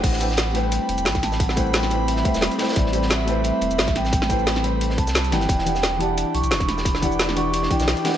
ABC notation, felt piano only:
X:1
M:4/4
L:1/8
Q:"Swing 16ths" 1/4=176
K:Em
V:1 name="Felt piano"
[A,EBcg] [A,EBcg] z [A,EBcg]4- [A,EBcg]- | [A,EBcg] [A,EBcg]2 [A,EBcg]2 [A,EBcg]2 [A,EBcg]- | [A,EBcg] [A,EBcg] z [A,EBcg]4- [A,EBcg]- | [A,EBcg] [A,EBcg]2 [A,EBcg]2 z2 [E,EGdf]- |
[E,EGdf] [E,EGdf] z [E,EGdf]4- [E,EGdf]- | [E,EGdf] [E,EGdf]2 [E,EGdf]2 [E,EGdg]2 [E,EGdf] |]